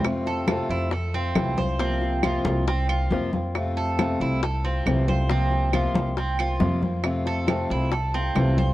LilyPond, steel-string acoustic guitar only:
\new Staff \with { instrumentName = "Steel-string acoustic guitar" } { \time 4/4 \key f \major \tempo 4 = 137 <c a c' f'>4 <c a c' f'>4 r8 <a c' f'>8 <c e a c' f'>8 <a c' f'>8 | <c f bes c' f'>4 <c f bes c' f'>4 r8 <bes c' f'>8 <c f bes c' f'>8 <bes c' f'>8 | <c a c' f'>4 <c a c' f'>4 r8 <a c' f'>8 <c e a c' f'>8 <a c' f'>8 | <c f bes c' f'>4 <c f bes c' f'>4 r8 <bes c' f'>8 <c f bes c' f'>8 <bes c' f'>8 |
<c a c' f'>4 <c a c' f'>4 r8 <a c' f'>8 <c e a c' f'>8 <a c' f'>8 | }